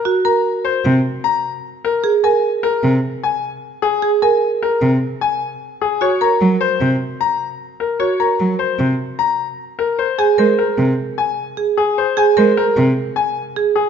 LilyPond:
<<
  \new Staff \with { instrumentName = "Grand piano" } { \time 5/4 \key aes \mixolydian \tempo 4 = 151 r8 bes''8 r8 c''8 r4 bes''8 r4 bes'8 | r8 aes''8 r8 bes'8 r4 aes''8 r4 aes'8 | r8 aes''8 r8 bes'8 r4 aes''8 r4 aes'8 | des''8 bes''8 r8 c''8 r4 bes''8 r4 bes'8 |
des''8 bes''8 r8 c''8 r4 bes''8 r4 bes'8 | c''8 aes''8 c''8 bes'8 r4 aes''8 r4 aes'8 | c''8 aes''8 c''8 bes'8 r4 aes''8 r4 aes'8 | }
  \new Staff \with { instrumentName = "Marimba" } { \time 5/4 \key aes \mixolydian ges'8 bes'8 r1 | aes'8 bes'8 r1 | aes'8 bes'8 r1 | ges'8 bes'8 r1 |
ges'8 bes'8 r1 | r8 aes'8 bes'8 r2 r8 aes'8 r8 | r8 aes'8 bes'8 r2 r8 aes'8 r8 | }
  \new Staff \with { instrumentName = "Cello" } { \clef bass \time 5/4 \key aes \mixolydian r2 c8 r2 r8 | r2 c8 r2 r8 | r2 c8 r2 r8 | r4 ges8 r8 c8 r2 r8 |
r4 ges8 r8 c8 r2 r8 | r4 aes8 r8 c8 r2 r8 | r4 aes8 r8 c8 r2 r8 | }
>>